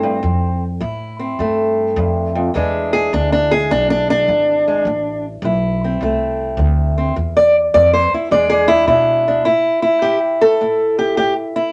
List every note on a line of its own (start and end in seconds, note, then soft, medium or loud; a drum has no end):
0.00 0.22 G2 medium
0.00 0.21 A3 soft
0.00 0.63 C4 loud
0.23 0.77 F2 medium
0.23 0.80 F2 medium
0.80 1.35 F2 medium
0.80 1.37 A2 medium
0.80 2.56 E4 medium
1.19 2.53 C4 soft
1.39 1.94 F2 medium
1.39 1.95 G2 medium
1.39 2.53 A3 soft
1.96 2.53 F2 loud
1.96 2.35 G2 medium
2.35 2.54 F2 medium
2.54 3.08 E2 medium
2.54 3.11 E2 medium
2.54 6.05 E3 medium
2.54 3.51 G#3 medium
2.54 3.12 D4 medium
2.54 2.92 G#4 soft
2.93 3.12 G#4 loud
3.13 3.69 D2 medium
3.13 3.67 E2 medium
3.13 3.31 D4 medium
3.32 3.52 D4 medium
3.51 4.67 G#3 soft
3.51 3.71 G#4 loud
3.71 4.27 B1 medium
3.71 4.24 E2 medium
3.71 3.89 D4 loud
3.90 4.09 D4 loud
4.10 5.25 D4 loud
4.28 4.84 G#1 medium
4.28 4.82 E2 medium
4.68 4.84 G#3 soft
4.85 5.41 A1 medium
4.85 5.40 A2 medium
5.42 5.99 B1 loud
5.42 5.98 A2 medium
5.42 7.36 E4 soft
5.84 6.97 C4 medium
6.01 6.57 C2 medium
6.01 6.55 A2 medium
6.01 7.14 A3 soft
6.57 7.14 D2 loud
6.57 7.12 A2 medium
6.98 7.14 C4 soft
7.16 7.72 E2 medium
7.16 7.70 A2 medium
7.37 7.55 D5 loud
7.74 8.09 F2 loud
7.74 8.28 A2 medium
7.74 7.93 D5 loud
7.93 8.12 C5 loud
8.12 8.30 E4 medium
8.12 muted upright bass stroke soft
8.31 8.85 E2 medium
8.31 8.87 E2 medium
8.31 9.44 G#3 soft
8.31 8.89 D4 medium
8.31 8.48 G#4 soft
8.31 8.50 D5 loud
8.50 8.69 G#4 loud
8.68 8.86 E4 loud
8.87 9.42 E2 medium
8.87 9.43 B2 loud
8.87 9.27 D4 soft
8.87 9.44 E4 medium
9.28 9.44 D4 soft
9.45 9.99 A2 medium
9.45 9.81 E4 medium
9.82 10.60 E4 medium
10.02 10.57 A2 medium
10.02 10.18 G4 medium
10.41 10.98 A4 loud
10.61 11.14 A2 medium
10.61 11.56 E4 soft
10.99 11.16 G4 medium
11.17 11.72 A2 medium
11.17 11.33 G4 medium
11.56 11.72 E4 medium